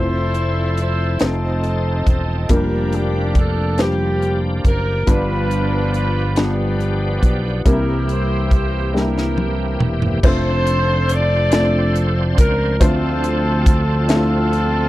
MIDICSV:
0, 0, Header, 1, 6, 480
1, 0, Start_track
1, 0, Key_signature, -1, "major"
1, 0, Tempo, 859599
1, 1394, Time_signature, 6, 3, 24, 8
1, 8313, End_track
2, 0, Start_track
2, 0, Title_t, "Horn section"
2, 0, Program_c, 0, 61
2, 0, Note_on_c, 0, 64, 55
2, 0, Note_on_c, 0, 69, 55
2, 0, Note_on_c, 0, 72, 79
2, 439, Note_off_c, 0, 72, 0
2, 447, Note_on_c, 0, 72, 66
2, 659, Note_off_c, 0, 64, 0
2, 659, Note_off_c, 0, 69, 0
2, 664, Note_off_c, 0, 72, 0
2, 686, Note_on_c, 0, 69, 68
2, 687, Note_on_c, 0, 60, 47
2, 688, Note_on_c, 0, 63, 51
2, 1156, Note_off_c, 0, 69, 0
2, 1163, Note_on_c, 0, 69, 62
2, 1379, Note_off_c, 0, 60, 0
2, 1379, Note_off_c, 0, 63, 0
2, 1382, Note_off_c, 0, 69, 0
2, 1402, Note_on_c, 0, 70, 69
2, 1405, Note_on_c, 0, 62, 52
2, 1405, Note_on_c, 0, 67, 53
2, 1638, Note_off_c, 0, 70, 0
2, 1642, Note_off_c, 0, 67, 0
2, 1648, Note_on_c, 0, 67, 64
2, 1881, Note_off_c, 0, 67, 0
2, 1886, Note_on_c, 0, 69, 67
2, 2098, Note_off_c, 0, 62, 0
2, 2121, Note_off_c, 0, 69, 0
2, 2129, Note_on_c, 0, 67, 63
2, 2450, Note_off_c, 0, 67, 0
2, 2605, Note_on_c, 0, 70, 63
2, 2824, Note_off_c, 0, 70, 0
2, 2841, Note_on_c, 0, 71, 72
2, 2842, Note_on_c, 0, 62, 56
2, 2842, Note_on_c, 0, 65, 54
2, 3309, Note_off_c, 0, 71, 0
2, 3315, Note_on_c, 0, 71, 66
2, 3536, Note_off_c, 0, 62, 0
2, 3537, Note_off_c, 0, 65, 0
2, 3539, Note_off_c, 0, 71, 0
2, 3567, Note_on_c, 0, 67, 60
2, 3568, Note_on_c, 0, 59, 48
2, 3569, Note_on_c, 0, 62, 44
2, 4036, Note_off_c, 0, 67, 0
2, 4043, Note_on_c, 0, 67, 53
2, 4132, Note_off_c, 0, 67, 0
2, 4259, Note_off_c, 0, 59, 0
2, 4260, Note_off_c, 0, 62, 0
2, 4288, Note_on_c, 0, 64, 50
2, 4290, Note_on_c, 0, 67, 50
2, 4291, Note_on_c, 0, 70, 65
2, 4507, Note_off_c, 0, 70, 0
2, 4529, Note_on_c, 0, 72, 65
2, 4746, Note_off_c, 0, 72, 0
2, 4766, Note_on_c, 0, 72, 61
2, 4979, Note_off_c, 0, 64, 0
2, 4980, Note_off_c, 0, 67, 0
2, 4984, Note_off_c, 0, 72, 0
2, 5005, Note_on_c, 0, 70, 55
2, 5008, Note_on_c, 0, 64, 39
2, 5009, Note_off_c, 0, 64, 0
2, 5009, Note_on_c, 0, 64, 42
2, 5009, Note_on_c, 0, 67, 41
2, 5011, Note_off_c, 0, 67, 0
2, 5011, Note_off_c, 0, 70, 0
2, 5011, Note_on_c, 0, 67, 43
2, 5011, Note_on_c, 0, 70, 58
2, 5542, Note_off_c, 0, 70, 0
2, 5699, Note_off_c, 0, 64, 0
2, 5700, Note_off_c, 0, 67, 0
2, 5729, Note_on_c, 0, 69, 62
2, 5730, Note_on_c, 0, 72, 86
2, 6199, Note_off_c, 0, 69, 0
2, 6201, Note_off_c, 0, 72, 0
2, 6206, Note_on_c, 0, 69, 64
2, 6206, Note_on_c, 0, 74, 90
2, 6679, Note_off_c, 0, 74, 0
2, 6822, Note_off_c, 0, 69, 0
2, 6917, Note_on_c, 0, 70, 72
2, 7137, Note_off_c, 0, 70, 0
2, 7158, Note_on_c, 0, 69, 78
2, 7163, Note_on_c, 0, 60, 61
2, 7166, Note_on_c, 0, 65, 57
2, 7853, Note_off_c, 0, 60, 0
2, 7855, Note_off_c, 0, 65, 0
2, 7860, Note_off_c, 0, 69, 0
2, 7867, Note_on_c, 0, 69, 82
2, 7877, Note_on_c, 0, 60, 55
2, 7877, Note_on_c, 0, 65, 56
2, 8313, Note_off_c, 0, 60, 0
2, 8313, Note_off_c, 0, 65, 0
2, 8313, Note_off_c, 0, 69, 0
2, 8313, End_track
3, 0, Start_track
3, 0, Title_t, "Upright piano"
3, 0, Program_c, 1, 0
3, 0, Note_on_c, 1, 53, 54
3, 0, Note_on_c, 1, 57, 55
3, 0, Note_on_c, 1, 60, 54
3, 0, Note_on_c, 1, 64, 52
3, 0, Note_on_c, 1, 72, 65
3, 0, Note_on_c, 1, 74, 43
3, 62, Note_off_c, 1, 74, 0
3, 67, Control_c, 1, 64, 127
3, 553, Note_off_c, 1, 57, 0
3, 553, Note_off_c, 1, 60, 0
3, 554, Note_off_c, 1, 53, 0
3, 554, Note_off_c, 1, 64, 0
3, 556, Note_off_c, 1, 72, 0
3, 668, Note_on_c, 1, 57, 44
3, 670, Note_on_c, 1, 60, 43
3, 672, Note_on_c, 1, 63, 43
3, 673, Note_on_c, 1, 65, 42
3, 676, Note_on_c, 1, 72, 54
3, 682, Control_c, 1, 64, 0
3, 790, Control_c, 1, 64, 127
3, 1273, Note_off_c, 1, 57, 0
3, 1273, Note_off_c, 1, 60, 0
3, 1274, Note_off_c, 1, 63, 0
3, 1275, Note_off_c, 1, 65, 0
3, 1277, Note_off_c, 1, 72, 0
3, 1393, Note_on_c, 1, 55, 59
3, 1393, Note_on_c, 1, 58, 56
3, 1395, Note_on_c, 1, 62, 54
3, 1396, Note_on_c, 1, 65, 56
3, 1399, Note_on_c, 1, 70, 64
3, 1403, Control_c, 1, 64, 0
3, 1514, Control_c, 1, 64, 127
3, 1995, Note_off_c, 1, 55, 0
3, 1995, Note_off_c, 1, 58, 0
3, 1996, Note_off_c, 1, 62, 0
3, 1997, Note_off_c, 1, 65, 0
3, 1998, Note_off_c, 1, 70, 0
3, 2114, Note_on_c, 1, 55, 49
3, 2116, Note_on_c, 1, 58, 45
3, 2117, Note_on_c, 1, 62, 41
3, 2121, Note_on_c, 1, 65, 42
3, 2121, Note_on_c, 1, 72, 52
3, 2716, Note_off_c, 1, 55, 0
3, 2717, Note_off_c, 1, 58, 0
3, 2718, Note_off_c, 1, 62, 0
3, 2719, Note_off_c, 1, 65, 0
3, 2719, Note_off_c, 1, 72, 0
3, 2828, Note_on_c, 1, 55, 60
3, 2830, Note_on_c, 1, 59, 57
3, 2831, Note_on_c, 1, 65, 53
3, 2832, Note_on_c, 1, 43, 50
3, 2833, Note_on_c, 1, 62, 54
3, 2834, Note_on_c, 1, 71, 71
3, 2843, Control_c, 1, 64, 0
3, 2955, Control_c, 1, 64, 127
3, 3433, Note_off_c, 1, 55, 0
3, 3434, Note_off_c, 1, 59, 0
3, 3435, Note_off_c, 1, 62, 0
3, 3435, Note_off_c, 1, 65, 0
3, 3436, Note_off_c, 1, 71, 0
3, 3531, Note_off_c, 1, 43, 0
3, 3553, Note_on_c, 1, 55, 50
3, 3554, Note_on_c, 1, 59, 44
3, 3555, Note_on_c, 1, 62, 44
3, 3558, Note_on_c, 1, 65, 46
3, 3559, Note_on_c, 1, 71, 58
3, 4155, Note_off_c, 1, 55, 0
3, 4156, Note_off_c, 1, 59, 0
3, 4157, Note_off_c, 1, 62, 0
3, 4158, Note_off_c, 1, 65, 0
3, 4159, Note_off_c, 1, 71, 0
3, 4272, Note_on_c, 1, 55, 60
3, 4273, Note_on_c, 1, 58, 55
3, 4275, Note_on_c, 1, 60, 55
3, 4276, Note_on_c, 1, 48, 49
3, 4276, Note_on_c, 1, 62, 42
3, 4278, Note_on_c, 1, 70, 67
3, 4283, Control_c, 1, 64, 0
3, 4312, Note_on_c, 1, 64, 57
3, 4313, Note_off_c, 1, 62, 0
3, 4384, Control_c, 1, 64, 127
3, 4875, Note_off_c, 1, 55, 0
3, 4875, Note_off_c, 1, 58, 0
3, 4876, Note_off_c, 1, 60, 0
3, 4878, Note_off_c, 1, 70, 0
3, 4895, Note_off_c, 1, 64, 0
3, 4973, Note_off_c, 1, 48, 0
3, 4991, Note_on_c, 1, 55, 47
3, 4993, Note_on_c, 1, 58, 44
3, 4993, Note_on_c, 1, 60, 43
3, 4996, Note_on_c, 1, 62, 35
3, 4997, Note_on_c, 1, 67, 55
3, 5031, Note_on_c, 1, 64, 45
3, 5032, Note_off_c, 1, 62, 0
3, 5594, Note_off_c, 1, 55, 0
3, 5594, Note_off_c, 1, 58, 0
3, 5595, Note_off_c, 1, 60, 0
3, 5597, Note_off_c, 1, 67, 0
3, 5614, Note_off_c, 1, 64, 0
3, 5715, Note_on_c, 1, 57, 77
3, 5716, Note_on_c, 1, 60, 70
3, 5717, Note_on_c, 1, 62, 70
3, 5720, Note_on_c, 1, 65, 68
3, 5720, Note_on_c, 1, 72, 79
3, 5721, Control_c, 1, 64, 0
3, 5809, Control_c, 1, 64, 127
3, 6315, Note_off_c, 1, 57, 0
3, 6316, Note_off_c, 1, 60, 0
3, 6316, Note_off_c, 1, 62, 0
3, 6317, Note_off_c, 1, 65, 0
3, 6317, Note_off_c, 1, 72, 0
3, 6431, Note_on_c, 1, 57, 61
3, 6432, Note_on_c, 1, 60, 55
3, 6435, Note_on_c, 1, 62, 56
3, 6436, Note_on_c, 1, 65, 56
3, 6438, Note_on_c, 1, 74, 65
3, 7032, Note_off_c, 1, 57, 0
3, 7033, Note_off_c, 1, 60, 0
3, 7034, Note_off_c, 1, 62, 0
3, 7034, Note_off_c, 1, 65, 0
3, 7036, Note_off_c, 1, 74, 0
3, 7149, Note_on_c, 1, 57, 79
3, 7150, Note_on_c, 1, 60, 70
3, 7152, Note_on_c, 1, 62, 67
3, 7153, Note_on_c, 1, 50, 57
3, 7153, Note_on_c, 1, 65, 65
3, 7154, Note_on_c, 1, 72, 84
3, 7159, Control_c, 1, 64, 0
3, 7274, Control_c, 1, 64, 127
3, 7750, Note_off_c, 1, 57, 0
3, 7751, Note_off_c, 1, 60, 0
3, 7752, Note_off_c, 1, 62, 0
3, 7752, Note_off_c, 1, 65, 0
3, 7753, Note_off_c, 1, 72, 0
3, 7848, Note_off_c, 1, 50, 0
3, 7867, Note_on_c, 1, 57, 66
3, 7869, Note_on_c, 1, 60, 55
3, 7869, Note_on_c, 1, 62, 59
3, 7872, Note_on_c, 1, 64, 47
3, 7873, Note_on_c, 1, 69, 72
3, 7907, Note_off_c, 1, 64, 0
3, 7910, Note_on_c, 1, 65, 56
3, 8313, Note_off_c, 1, 57, 0
3, 8313, Note_off_c, 1, 60, 0
3, 8313, Note_off_c, 1, 62, 0
3, 8313, Note_off_c, 1, 65, 0
3, 8313, Note_off_c, 1, 69, 0
3, 8313, End_track
4, 0, Start_track
4, 0, Title_t, "Tonewheel organ"
4, 0, Program_c, 2, 16
4, 0, Note_on_c, 2, 53, 45
4, 0, Note_on_c, 2, 60, 41
4, 0, Note_on_c, 2, 64, 40
4, 0, Note_on_c, 2, 69, 49
4, 664, Note_off_c, 2, 53, 0
4, 665, Note_off_c, 2, 60, 0
4, 667, Note_off_c, 2, 69, 0
4, 671, Note_on_c, 2, 53, 44
4, 672, Note_on_c, 2, 60, 39
4, 672, Note_on_c, 2, 63, 41
4, 673, Note_off_c, 2, 64, 0
4, 674, Note_on_c, 2, 69, 50
4, 1388, Note_off_c, 2, 53, 0
4, 1393, Note_off_c, 2, 60, 0
4, 1393, Note_off_c, 2, 63, 0
4, 1394, Note_off_c, 2, 69, 0
4, 1394, Note_on_c, 2, 58, 43
4, 1394, Note_on_c, 2, 62, 41
4, 1395, Note_on_c, 2, 53, 44
4, 1395, Note_on_c, 2, 67, 48
4, 2813, Note_off_c, 2, 53, 0
4, 2813, Note_off_c, 2, 58, 0
4, 2813, Note_off_c, 2, 62, 0
4, 2813, Note_off_c, 2, 67, 0
4, 2839, Note_on_c, 2, 53, 44
4, 2839, Note_on_c, 2, 67, 53
4, 2840, Note_on_c, 2, 62, 43
4, 2841, Note_on_c, 2, 59, 43
4, 4255, Note_off_c, 2, 53, 0
4, 4255, Note_off_c, 2, 67, 0
4, 4256, Note_off_c, 2, 59, 0
4, 4256, Note_off_c, 2, 62, 0
4, 4278, Note_on_c, 2, 58, 44
4, 4280, Note_on_c, 2, 52, 45
4, 4280, Note_on_c, 2, 67, 54
4, 4282, Note_on_c, 2, 60, 43
4, 5693, Note_off_c, 2, 58, 0
4, 5694, Note_off_c, 2, 52, 0
4, 5694, Note_off_c, 2, 67, 0
4, 5695, Note_off_c, 2, 60, 0
4, 5714, Note_on_c, 2, 53, 58
4, 5714, Note_on_c, 2, 60, 52
4, 5715, Note_on_c, 2, 62, 52
4, 5715, Note_on_c, 2, 72, 62
4, 7129, Note_off_c, 2, 53, 0
4, 7129, Note_off_c, 2, 60, 0
4, 7129, Note_off_c, 2, 72, 0
4, 7130, Note_off_c, 2, 62, 0
4, 7155, Note_on_c, 2, 62, 56
4, 7156, Note_on_c, 2, 53, 57
4, 7156, Note_on_c, 2, 69, 64
4, 7158, Note_on_c, 2, 60, 51
4, 8313, Note_off_c, 2, 53, 0
4, 8313, Note_off_c, 2, 60, 0
4, 8313, Note_off_c, 2, 62, 0
4, 8313, Note_off_c, 2, 69, 0
4, 8313, End_track
5, 0, Start_track
5, 0, Title_t, "Fingered electric bass"
5, 0, Program_c, 3, 33
5, 0, Note_on_c, 3, 29, 75
5, 651, Note_off_c, 3, 29, 0
5, 680, Note_on_c, 3, 29, 65
5, 1135, Note_off_c, 3, 29, 0
5, 1155, Note_on_c, 3, 28, 67
5, 1376, Note_off_c, 3, 28, 0
5, 1396, Note_on_c, 3, 29, 77
5, 2573, Note_off_c, 3, 29, 0
5, 2594, Note_on_c, 3, 30, 72
5, 2816, Note_off_c, 3, 30, 0
5, 2833, Note_on_c, 3, 31, 73
5, 4012, Note_off_c, 3, 31, 0
5, 4034, Note_on_c, 3, 35, 70
5, 4256, Note_off_c, 3, 35, 0
5, 4274, Note_on_c, 3, 36, 75
5, 5452, Note_off_c, 3, 36, 0
5, 5474, Note_on_c, 3, 28, 64
5, 5695, Note_off_c, 3, 28, 0
5, 5717, Note_on_c, 3, 29, 97
5, 6891, Note_off_c, 3, 29, 0
5, 6914, Note_on_c, 3, 37, 84
5, 7134, Note_off_c, 3, 37, 0
5, 7151, Note_on_c, 3, 38, 104
5, 8313, Note_off_c, 3, 38, 0
5, 8313, End_track
6, 0, Start_track
6, 0, Title_t, "Drums"
6, 193, Note_on_c, 9, 42, 38
6, 249, Note_off_c, 9, 42, 0
6, 433, Note_on_c, 9, 42, 36
6, 489, Note_off_c, 9, 42, 0
6, 667, Note_on_c, 9, 42, 53
6, 674, Note_on_c, 9, 38, 76
6, 723, Note_off_c, 9, 42, 0
6, 730, Note_off_c, 9, 38, 0
6, 914, Note_on_c, 9, 42, 35
6, 969, Note_off_c, 9, 42, 0
6, 1154, Note_on_c, 9, 36, 69
6, 1156, Note_on_c, 9, 42, 35
6, 1210, Note_off_c, 9, 36, 0
6, 1212, Note_off_c, 9, 42, 0
6, 1391, Note_on_c, 9, 42, 71
6, 1393, Note_on_c, 9, 36, 73
6, 1447, Note_off_c, 9, 42, 0
6, 1449, Note_off_c, 9, 36, 0
6, 1633, Note_on_c, 9, 42, 39
6, 1689, Note_off_c, 9, 42, 0
6, 1871, Note_on_c, 9, 36, 71
6, 1871, Note_on_c, 9, 42, 35
6, 1927, Note_off_c, 9, 36, 0
6, 1927, Note_off_c, 9, 42, 0
6, 2110, Note_on_c, 9, 42, 53
6, 2117, Note_on_c, 9, 38, 76
6, 2166, Note_off_c, 9, 42, 0
6, 2173, Note_off_c, 9, 38, 0
6, 2358, Note_on_c, 9, 42, 35
6, 2414, Note_off_c, 9, 42, 0
6, 2594, Note_on_c, 9, 36, 69
6, 2596, Note_on_c, 9, 42, 37
6, 2650, Note_off_c, 9, 36, 0
6, 2652, Note_off_c, 9, 42, 0
6, 2833, Note_on_c, 9, 42, 70
6, 2834, Note_on_c, 9, 36, 75
6, 2889, Note_off_c, 9, 42, 0
6, 2890, Note_off_c, 9, 36, 0
6, 3077, Note_on_c, 9, 42, 41
6, 3133, Note_off_c, 9, 42, 0
6, 3317, Note_on_c, 9, 42, 34
6, 3373, Note_off_c, 9, 42, 0
6, 3553, Note_on_c, 9, 42, 54
6, 3559, Note_on_c, 9, 38, 80
6, 3608, Note_off_c, 9, 42, 0
6, 3615, Note_off_c, 9, 38, 0
6, 3799, Note_on_c, 9, 42, 34
6, 3855, Note_off_c, 9, 42, 0
6, 4035, Note_on_c, 9, 36, 70
6, 4037, Note_on_c, 9, 42, 37
6, 4091, Note_off_c, 9, 36, 0
6, 4093, Note_off_c, 9, 42, 0
6, 4275, Note_on_c, 9, 36, 79
6, 4276, Note_on_c, 9, 42, 65
6, 4331, Note_off_c, 9, 36, 0
6, 4332, Note_off_c, 9, 42, 0
6, 4518, Note_on_c, 9, 42, 42
6, 4573, Note_off_c, 9, 42, 0
6, 4753, Note_on_c, 9, 36, 74
6, 4755, Note_on_c, 9, 42, 36
6, 4809, Note_off_c, 9, 36, 0
6, 4811, Note_off_c, 9, 42, 0
6, 5006, Note_on_c, 9, 38, 38
6, 5062, Note_off_c, 9, 38, 0
6, 5124, Note_on_c, 9, 38, 42
6, 5180, Note_off_c, 9, 38, 0
6, 5236, Note_on_c, 9, 48, 53
6, 5292, Note_off_c, 9, 48, 0
6, 5475, Note_on_c, 9, 45, 64
6, 5531, Note_off_c, 9, 45, 0
6, 5596, Note_on_c, 9, 43, 58
6, 5652, Note_off_c, 9, 43, 0
6, 5715, Note_on_c, 9, 36, 98
6, 5715, Note_on_c, 9, 49, 87
6, 5771, Note_off_c, 9, 36, 0
6, 5771, Note_off_c, 9, 49, 0
6, 5957, Note_on_c, 9, 42, 55
6, 6012, Note_off_c, 9, 42, 0
6, 6194, Note_on_c, 9, 42, 60
6, 6250, Note_off_c, 9, 42, 0
6, 6431, Note_on_c, 9, 42, 70
6, 6438, Note_on_c, 9, 38, 97
6, 6487, Note_off_c, 9, 42, 0
6, 6493, Note_off_c, 9, 38, 0
6, 6676, Note_on_c, 9, 42, 43
6, 6732, Note_off_c, 9, 42, 0
6, 6913, Note_on_c, 9, 36, 87
6, 6914, Note_on_c, 9, 42, 68
6, 6969, Note_off_c, 9, 36, 0
6, 6970, Note_off_c, 9, 42, 0
6, 7152, Note_on_c, 9, 36, 94
6, 7152, Note_on_c, 9, 42, 87
6, 7208, Note_off_c, 9, 36, 0
6, 7208, Note_off_c, 9, 42, 0
6, 7392, Note_on_c, 9, 42, 53
6, 7448, Note_off_c, 9, 42, 0
6, 7629, Note_on_c, 9, 36, 85
6, 7631, Note_on_c, 9, 42, 62
6, 7685, Note_off_c, 9, 36, 0
6, 7687, Note_off_c, 9, 42, 0
6, 7867, Note_on_c, 9, 42, 69
6, 7874, Note_on_c, 9, 38, 103
6, 7923, Note_off_c, 9, 42, 0
6, 7930, Note_off_c, 9, 38, 0
6, 8113, Note_on_c, 9, 42, 43
6, 8169, Note_off_c, 9, 42, 0
6, 8313, End_track
0, 0, End_of_file